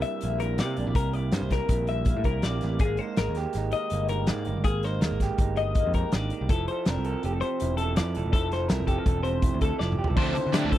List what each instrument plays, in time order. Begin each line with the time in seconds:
Already playing: clean electric guitar C3 G3 A#3 E4 A#4
0.02 clean electric guitar G2 E5, closed hi-hat
0.21 picked electric bass A#1, clean electric guitar A#3, closed hi-hat
0.40 clean electric guitar E4 A#4, closed hi-hat
0.58 picked electric bass C3, clean electric guitar C3 A#3 D5, snare, closed hi-hat
0.76 picked electric bass A#1, clean electric guitar D4, closed hi-hat
0.86 picked electric bass A#1, clean electric guitar E4
0.95 picked electric bass C2, clean electric guitar C3 A#3 A#4, kick, closed hi-hat
1.13 clean electric guitar E4 D5, closed hi-hat
1.32 picked electric bass G2, clean electric guitar G3 A#3 C5, snare, closed hi-hat
1.42 picked electric bass C2
1.50 clean electric guitar A#4, kick, snare, closed hi-hat
1.69 picked electric bass A#1, clean electric guitar E4, kick, closed hi-hat
1.87 clean electric guitar G2 E5, closed hi-hat
2.05 clean electric guitar A#3, kick, closed hi-hat
2.17 picked electric bass A2
2.24 picked electric bass C2, clean electric guitar E4 A#4, kick, closed hi-hat
2.42 picked electric bass A#1, clean electric guitar D5, snare, closed hi-hat
2.47 clean electric guitar C3 A#3
2.61 picked electric bass A1, clean electric guitar E4, snare, closed hi-hat
2.79 picked electric bass G#1, clean electric guitar G#4, kick, closed hi-hat
2.84 clean electric guitar G#2 A#3
2.97 clean electric guitar D#4 C5, closed hi-hat
3.16 picked electric bass G#1, clean electric guitar G#3 A#4, snare, closed hi-hat
3.21 clean electric guitar A#3
3.28 picked electric bass D#2
3.35 clean electric guitar G4, snare, closed hi-hat
3.53 picked electric bass G#1, snare, closed hi-hat
3.57 clean electric guitar D#4
3.72 clean electric guitar D#3 D#5, closed hi-hat
3.90 picked electric bass G1, clean electric guitar A#3, closed hi-hat
4.08 clean electric guitar D#4 A#4, closed hi-hat
4.27 clean electric guitar G#2 A#3 D5, picked electric bass G#2, snare, closed hi-hat
4.45 picked electric bass G1, clean electric guitar D#4, closed hi-hat
4.56 picked electric bass G1
4.64 picked electric bass G#1, clean electric guitar A#3 G#4, kick, closed hi-hat
4.83 clean electric guitar D#4 C5, snare, closed hi-hat
5.01 picked electric bass D#2, clean electric guitar G#3 A#3 A#4, snare, closed hi-hat
5.12 picked electric bass G#1
5.20 clean electric guitar G4, kick, snare, closed hi-hat
5.38 picked electric bass G1, clean electric guitar D#4, kick, closed hi-hat
5.57 clean electric guitar D#5, closed hi-hat
5.61 clean electric guitar D#3
5.75 kick, closed hi-hat
5.79 clean electric guitar A#3
5.86 picked electric bass F2
5.94 clean electric guitar A#4, kick, closed hi-hat
5.98 clean electric guitar D#4
6.12 picked electric bass G#1, clean electric guitar D5, snare, closed hi-hat
6.16 clean electric guitar D3
6.30 clean electric guitar D#3, closed hi-hat
6.41 picked electric bass C2
6.49 picked electric bass F1, clean electric guitar F3 E4 A4, kick, closed hi-hat
6.68 clean electric guitar A4 C5, closed hi-hat
6.85 picked electric bass F1, clean electric guitar C4 D4 A#4, snare, closed hi-hat
6.96 picked electric bass C2, clean electric guitar E4
7.04 clean electric guitar A4 A#4, closed hi-hat
7.23 picked electric bass F1, clean electric guitar G4, closed hi-hat
7.33 clean electric guitar A4
7.41 clean electric guitar C3 C5, closed hi-hat
7.60 picked electric bass E1, clean electric guitar E4, closed hi-hat
7.77 clean electric guitar A4, closed hi-hat
7.82 clean electric guitar A4
7.96 picked electric bass F2, clean electric guitar F3 E4 D5, snare, closed hi-hat
8.15 picked electric bass E1, clean electric guitar A4, closed hi-hat
8.25 picked electric bass E1
8.33 picked electric bass F1, clean electric guitar F3 E4 A4, kick, closed hi-hat
8.51 clean electric guitar A4 C5, snare, closed hi-hat
8.68 picked electric bass C2, clean electric guitar C4 E4 A#4, snare, closed hi-hat
8.80 picked electric bass F1
8.87 clean electric guitar G4 A4, kick, closed hi-hat
8.98 clean electric guitar A#4
9.06 picked electric bass E1, clean electric guitar A4, kick, closed hi-hat
9.23 clean electric guitar C3 C5, closed hi-hat
9.42 clean electric guitar E4, kick, closed hi-hat
9.54 picked electric bass D2
9.61 clean electric guitar A4, kick, closed hi-hat
9.79 picked electric bass F1, clean electric guitar F3 E4 D5, snare
9.92 mid tom
9.99 clean electric guitar G4
10.04 clean electric guitar A4, floor tom
10.10 picked electric bass C2
10.17 picked electric bass D2, overdriven electric guitar D3 F3 A3 D4, clean electric guitar D3 F3 C4 E4 C5, kick, crash
10.21 clean electric guitar A4
10.35 clean electric guitar E4, muted overdriven electric guitar stroke, closed hi-hat
10.47 picked electric bass D3
10.53 overdriven electric guitar D3 F3 A3 D4, clean electric guitar D5, snare, closed hi-hat
10.57 clean electric guitar G4
10.65 picked electric bass D2, clean electric guitar A4
10.72 clean electric guitar F3 A4, muted overdriven electric guitar stroke, kick, closed hi-hat